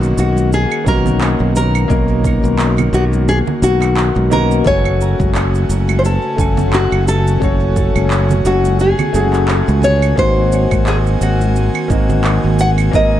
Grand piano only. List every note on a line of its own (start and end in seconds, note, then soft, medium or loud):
0.00 0.82 A#3 medium
0.00 0.83 C#4 medium
0.00 0.83 D#4 medium
0.00 0.84 F#4 loud
0.85 1.85 A#3 medium
0.85 1.86 C#4 medium
0.85 1.86 D#4 medium
0.85 1.87 F#4 medium
1.88 4.27 A#3 loud
1.88 4.27 C#4 medium
1.88 4.28 D#4 medium
1.88 4.28 A#4 loud
4.30 4.62 A#3 medium
4.30 4.62 C#4 medium
4.30 4.62 D#4 medium
4.30 4.62 F#4 loud
4.64 6.34 A3 medium
4.64 6.34 C#4 medium
4.64 6.35 F#4 medium
4.64 6.35 G#5 loud
6.37 7.37 A3 medium
6.37 7.38 C#4 medium
6.37 7.38 F#4 medium
6.37 7.39 G#5 medium
7.40 9.10 A3 medium
7.40 9.11 C#4 medium
7.40 9.11 F#4 medium
7.40 9.12 C#5 loud
9.12 10.13 A3 loud
9.12 10.14 C#4 medium
9.12 10.14 F#4 medium
9.12 10.15 G#4 loud
10.16 11.85 A#3 medium
10.16 11.86 C4 medium
10.16 11.87 D#4 medium
10.16 11.87 F#4 loud
11.88 12.89 A#3 medium
11.88 12.89 C4 medium
11.88 12.90 D#4 medium
11.88 12.90 F#4 medium
12.91 13.20 A#3 medium
12.91 13.20 C4 medium
12.91 13.20 D#4 medium
12.91 13.20 A#4 loud